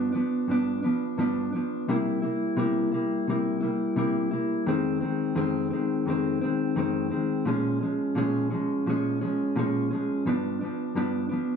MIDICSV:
0, 0, Header, 1, 2, 480
1, 0, Start_track
1, 0, Key_signature, -4, "minor"
1, 0, Tempo, 697918
1, 1294, Time_signature, 4, 2, 24, 8
1, 7953, End_track
2, 0, Start_track
2, 0, Title_t, "Clean electric guitar"
2, 0, Program_c, 0, 27
2, 0, Note_on_c, 0, 43, 82
2, 0, Note_on_c, 0, 53, 92
2, 0, Note_on_c, 0, 59, 97
2, 0, Note_on_c, 0, 62, 95
2, 76, Note_off_c, 0, 62, 0
2, 85, Note_on_c, 0, 62, 64
2, 92, Note_off_c, 0, 43, 0
2, 94, Note_off_c, 0, 59, 0
2, 95, Note_off_c, 0, 53, 0
2, 102, Note_on_c, 0, 59, 63
2, 111, Note_on_c, 0, 53, 50
2, 329, Note_off_c, 0, 62, 0
2, 330, Note_on_c, 0, 43, 64
2, 331, Note_off_c, 0, 53, 0
2, 338, Note_off_c, 0, 59, 0
2, 339, Note_on_c, 0, 53, 64
2, 351, Note_on_c, 0, 59, 64
2, 353, Note_on_c, 0, 62, 75
2, 561, Note_off_c, 0, 62, 0
2, 569, Note_on_c, 0, 62, 56
2, 572, Note_off_c, 0, 43, 0
2, 572, Note_off_c, 0, 59, 0
2, 576, Note_off_c, 0, 53, 0
2, 580, Note_on_c, 0, 59, 56
2, 593, Note_on_c, 0, 53, 52
2, 809, Note_off_c, 0, 53, 0
2, 811, Note_off_c, 0, 62, 0
2, 811, Note_on_c, 0, 43, 83
2, 814, Note_off_c, 0, 59, 0
2, 817, Note_on_c, 0, 53, 88
2, 822, Note_on_c, 0, 59, 88
2, 831, Note_on_c, 0, 62, 98
2, 1041, Note_off_c, 0, 62, 0
2, 1049, Note_on_c, 0, 62, 56
2, 1052, Note_off_c, 0, 43, 0
2, 1056, Note_off_c, 0, 53, 0
2, 1058, Note_off_c, 0, 59, 0
2, 1067, Note_on_c, 0, 59, 51
2, 1074, Note_on_c, 0, 53, 51
2, 1292, Note_off_c, 0, 62, 0
2, 1297, Note_on_c, 0, 48, 86
2, 1299, Note_off_c, 0, 53, 0
2, 1300, Note_off_c, 0, 59, 0
2, 1301, Note_on_c, 0, 55, 88
2, 1306, Note_on_c, 0, 58, 86
2, 1314, Note_on_c, 0, 64, 91
2, 1518, Note_off_c, 0, 64, 0
2, 1527, Note_on_c, 0, 64, 59
2, 1529, Note_off_c, 0, 58, 0
2, 1535, Note_off_c, 0, 48, 0
2, 1538, Note_off_c, 0, 55, 0
2, 1538, Note_on_c, 0, 58, 49
2, 1549, Note_on_c, 0, 55, 43
2, 1761, Note_off_c, 0, 55, 0
2, 1765, Note_on_c, 0, 48, 84
2, 1769, Note_off_c, 0, 58, 0
2, 1769, Note_on_c, 0, 55, 89
2, 1770, Note_off_c, 0, 64, 0
2, 1777, Note_on_c, 0, 58, 97
2, 1784, Note_on_c, 0, 64, 102
2, 1998, Note_off_c, 0, 64, 0
2, 2006, Note_on_c, 0, 64, 56
2, 2009, Note_off_c, 0, 48, 0
2, 2011, Note_off_c, 0, 55, 0
2, 2014, Note_off_c, 0, 58, 0
2, 2022, Note_on_c, 0, 58, 57
2, 2032, Note_on_c, 0, 55, 49
2, 2250, Note_off_c, 0, 64, 0
2, 2252, Note_on_c, 0, 48, 61
2, 2256, Note_off_c, 0, 55, 0
2, 2258, Note_off_c, 0, 58, 0
2, 2264, Note_on_c, 0, 55, 63
2, 2269, Note_on_c, 0, 58, 68
2, 2278, Note_on_c, 0, 64, 65
2, 2471, Note_off_c, 0, 64, 0
2, 2479, Note_on_c, 0, 64, 57
2, 2487, Note_off_c, 0, 58, 0
2, 2493, Note_off_c, 0, 48, 0
2, 2495, Note_on_c, 0, 58, 50
2, 2496, Note_off_c, 0, 55, 0
2, 2505, Note_on_c, 0, 55, 45
2, 2723, Note_off_c, 0, 55, 0
2, 2725, Note_on_c, 0, 48, 79
2, 2726, Note_off_c, 0, 64, 0
2, 2731, Note_on_c, 0, 55, 81
2, 2734, Note_off_c, 0, 58, 0
2, 2740, Note_on_c, 0, 64, 89
2, 2741, Note_on_c, 0, 58, 84
2, 2956, Note_off_c, 0, 64, 0
2, 2964, Note_on_c, 0, 64, 61
2, 2969, Note_off_c, 0, 48, 0
2, 2972, Note_off_c, 0, 55, 0
2, 2972, Note_off_c, 0, 58, 0
2, 2980, Note_on_c, 0, 58, 54
2, 2990, Note_on_c, 0, 55, 44
2, 3208, Note_off_c, 0, 55, 0
2, 3208, Note_on_c, 0, 41, 71
2, 3209, Note_off_c, 0, 64, 0
2, 3210, Note_on_c, 0, 51, 89
2, 3217, Note_off_c, 0, 58, 0
2, 3222, Note_on_c, 0, 56, 87
2, 3224, Note_on_c, 0, 60, 98
2, 3436, Note_off_c, 0, 60, 0
2, 3444, Note_on_c, 0, 60, 54
2, 3448, Note_off_c, 0, 56, 0
2, 3451, Note_off_c, 0, 41, 0
2, 3452, Note_off_c, 0, 51, 0
2, 3456, Note_on_c, 0, 56, 47
2, 3468, Note_on_c, 0, 51, 45
2, 3678, Note_off_c, 0, 51, 0
2, 3684, Note_on_c, 0, 41, 98
2, 3686, Note_off_c, 0, 56, 0
2, 3686, Note_on_c, 0, 51, 91
2, 3689, Note_off_c, 0, 60, 0
2, 3694, Note_on_c, 0, 56, 95
2, 3697, Note_on_c, 0, 60, 103
2, 3916, Note_off_c, 0, 60, 0
2, 3924, Note_on_c, 0, 60, 67
2, 3928, Note_off_c, 0, 41, 0
2, 3930, Note_off_c, 0, 51, 0
2, 3934, Note_off_c, 0, 56, 0
2, 3944, Note_on_c, 0, 56, 55
2, 3956, Note_on_c, 0, 51, 50
2, 4166, Note_on_c, 0, 41, 64
2, 4169, Note_off_c, 0, 60, 0
2, 4170, Note_off_c, 0, 51, 0
2, 4177, Note_off_c, 0, 56, 0
2, 4179, Note_on_c, 0, 51, 65
2, 4185, Note_on_c, 0, 56, 76
2, 4194, Note_on_c, 0, 60, 74
2, 4403, Note_off_c, 0, 60, 0
2, 4410, Note_off_c, 0, 41, 0
2, 4411, Note_on_c, 0, 60, 63
2, 4416, Note_off_c, 0, 51, 0
2, 4416, Note_off_c, 0, 56, 0
2, 4424, Note_on_c, 0, 56, 50
2, 4435, Note_on_c, 0, 51, 47
2, 4649, Note_off_c, 0, 51, 0
2, 4649, Note_on_c, 0, 41, 93
2, 4652, Note_off_c, 0, 60, 0
2, 4654, Note_off_c, 0, 56, 0
2, 4657, Note_on_c, 0, 51, 81
2, 4662, Note_on_c, 0, 56, 91
2, 4669, Note_on_c, 0, 60, 91
2, 4876, Note_off_c, 0, 60, 0
2, 4884, Note_on_c, 0, 60, 53
2, 4887, Note_off_c, 0, 56, 0
2, 4891, Note_off_c, 0, 41, 0
2, 4895, Note_off_c, 0, 51, 0
2, 4895, Note_on_c, 0, 56, 54
2, 4907, Note_on_c, 0, 51, 49
2, 5127, Note_on_c, 0, 46, 83
2, 5129, Note_off_c, 0, 60, 0
2, 5134, Note_off_c, 0, 51, 0
2, 5134, Note_off_c, 0, 56, 0
2, 5137, Note_on_c, 0, 53, 89
2, 5141, Note_on_c, 0, 56, 92
2, 5148, Note_on_c, 0, 61, 83
2, 5363, Note_off_c, 0, 61, 0
2, 5370, Note_off_c, 0, 46, 0
2, 5372, Note_on_c, 0, 61, 51
2, 5375, Note_off_c, 0, 53, 0
2, 5376, Note_off_c, 0, 56, 0
2, 5384, Note_on_c, 0, 56, 51
2, 5395, Note_on_c, 0, 53, 43
2, 5607, Note_off_c, 0, 53, 0
2, 5607, Note_on_c, 0, 46, 81
2, 5612, Note_off_c, 0, 61, 0
2, 5615, Note_off_c, 0, 56, 0
2, 5615, Note_on_c, 0, 53, 93
2, 5623, Note_on_c, 0, 56, 95
2, 5627, Note_on_c, 0, 61, 100
2, 5840, Note_off_c, 0, 61, 0
2, 5847, Note_off_c, 0, 56, 0
2, 5849, Note_on_c, 0, 61, 63
2, 5850, Note_off_c, 0, 46, 0
2, 5854, Note_off_c, 0, 53, 0
2, 5856, Note_on_c, 0, 56, 53
2, 5873, Note_on_c, 0, 53, 54
2, 6091, Note_off_c, 0, 61, 0
2, 6094, Note_off_c, 0, 53, 0
2, 6094, Note_off_c, 0, 56, 0
2, 6097, Note_on_c, 0, 46, 64
2, 6102, Note_on_c, 0, 53, 68
2, 6114, Note_on_c, 0, 56, 70
2, 6119, Note_on_c, 0, 61, 71
2, 6328, Note_off_c, 0, 61, 0
2, 6335, Note_off_c, 0, 46, 0
2, 6336, Note_on_c, 0, 61, 61
2, 6337, Note_off_c, 0, 53, 0
2, 6337, Note_off_c, 0, 56, 0
2, 6345, Note_on_c, 0, 56, 52
2, 6361, Note_on_c, 0, 53, 43
2, 6572, Note_off_c, 0, 53, 0
2, 6573, Note_on_c, 0, 46, 88
2, 6574, Note_off_c, 0, 61, 0
2, 6579, Note_off_c, 0, 56, 0
2, 6580, Note_on_c, 0, 53, 91
2, 6592, Note_on_c, 0, 56, 91
2, 6598, Note_on_c, 0, 61, 93
2, 6805, Note_off_c, 0, 61, 0
2, 6813, Note_off_c, 0, 46, 0
2, 6813, Note_on_c, 0, 61, 57
2, 6816, Note_off_c, 0, 53, 0
2, 6820, Note_off_c, 0, 56, 0
2, 6828, Note_on_c, 0, 56, 54
2, 6841, Note_on_c, 0, 53, 49
2, 7053, Note_off_c, 0, 61, 0
2, 7055, Note_off_c, 0, 53, 0
2, 7056, Note_on_c, 0, 43, 84
2, 7060, Note_off_c, 0, 56, 0
2, 7063, Note_on_c, 0, 53, 84
2, 7065, Note_on_c, 0, 59, 84
2, 7076, Note_on_c, 0, 62, 97
2, 7289, Note_off_c, 0, 62, 0
2, 7294, Note_off_c, 0, 43, 0
2, 7297, Note_on_c, 0, 62, 55
2, 7298, Note_off_c, 0, 53, 0
2, 7298, Note_off_c, 0, 59, 0
2, 7310, Note_on_c, 0, 59, 46
2, 7323, Note_on_c, 0, 53, 51
2, 7532, Note_off_c, 0, 53, 0
2, 7534, Note_off_c, 0, 62, 0
2, 7535, Note_on_c, 0, 43, 88
2, 7538, Note_off_c, 0, 59, 0
2, 7540, Note_on_c, 0, 53, 96
2, 7546, Note_on_c, 0, 59, 100
2, 7547, Note_on_c, 0, 62, 96
2, 7757, Note_off_c, 0, 62, 0
2, 7765, Note_on_c, 0, 62, 55
2, 7773, Note_off_c, 0, 43, 0
2, 7773, Note_off_c, 0, 59, 0
2, 7776, Note_off_c, 0, 53, 0
2, 7781, Note_on_c, 0, 59, 58
2, 7795, Note_on_c, 0, 53, 52
2, 7953, Note_off_c, 0, 53, 0
2, 7953, Note_off_c, 0, 59, 0
2, 7953, Note_off_c, 0, 62, 0
2, 7953, End_track
0, 0, End_of_file